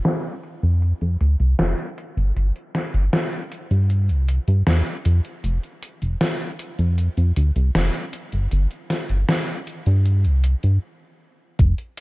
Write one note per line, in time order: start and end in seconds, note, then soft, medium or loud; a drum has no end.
0.05 snare loud
0.05 closed hi-hat medium
0.24 closed hi-hat soft
0.43 closed hi-hat medium
0.63 0.93 F2 medium
0.63 closed hi-hat soft
0.82 closed hi-hat medium
1.01 1.17 F2 medium
1.01 closed hi-hat soft
1.20 1.36 D2 medium
1.20 closed hi-hat medium
1.40 1.55 C2 medium
1.40 closed hi-hat soft
1.59 1.74 F1 medium
1.59 snare loud
1.59 closed hi-hat medium
1.78 closed hi-hat soft
1.98 closed hi-hat medium
2.17 2.32 G1 loud
2.17 closed hi-hat soft
2.36 2.51 G1 loud
2.36 closed hi-hat medium
2.56 closed hi-hat soft
2.75 snare medium
2.75 closed hi-hat medium
2.94 3.09 G1 medium
2.94 closed hi-hat soft
3.13 snare loud
3.13 closed hi-hat medium
3.32 closed hi-hat soft
3.52 closed hi-hat loud
3.71 4.11 G2 medium
3.71 closed hi-hat soft
3.90 closed hi-hat medium
4.09 4.40 C2 medium
4.09 closed hi-hat soft
4.29 closed hi-hat loud
4.48 4.63 G2 medium
4.48 closed hi-hat soft
4.67 4.82 E2 loud
4.67 snare loud
4.67 closed hi-hat medium
4.86 closed hi-hat soft
5.05 5.21 F2 loud
5.05 closed hi-hat medium
5.25 closed hi-hat soft
5.44 5.59 F1 loud
5.44 closed hi-hat medium
5.63 closed hi-hat soft
5.83 closed hi-hat loud
6.02 6.17 F1 medium
6.02 closed hi-hat soft
6.21 snare loud
6.21 closed hi-hat medium
6.40 closed hi-hat soft
6.59 closed hi-hat medium
6.79 7.09 F2 loud
6.79 closed hi-hat soft
6.98 closed hi-hat medium
7.17 7.32 F2 medium
7.17 closed hi-hat soft
7.36 7.52 D2 medium
7.36 closed hi-hat medium
7.56 7.71 C2 loud
7.56 closed hi-hat soft
7.75 7.90 F1 medium
7.75 snare loud
7.75 closed hi-hat medium
7.94 closed hi-hat soft
8.13 closed hi-hat loud
8.32 8.48 G1 loud
8.32 closed hi-hat soft
8.51 8.67 G1 loud
8.51 closed hi-hat medium
8.71 closed hi-hat soft
8.90 snare medium
8.90 closed hi-hat medium
9.09 9.25 G1 medium
9.09 closed hi-hat soft
9.29 snare loud
9.29 closed hi-hat medium
9.48 closed hi-hat soft
9.67 closed hi-hat medium
9.86 10.27 G2 medium
9.86 closed hi-hat soft
10.05 closed hi-hat medium
10.25 10.55 C2 medium
10.25 closed hi-hat soft
10.44 closed hi-hat medium
10.63 10.78 G2 medium
10.63 closed hi-hat soft
11.59 11.74 F1 loud
11.59 kick loud
11.59 closed hi-hat medium
11.59 tambourine soft
11.78 closed hi-hat soft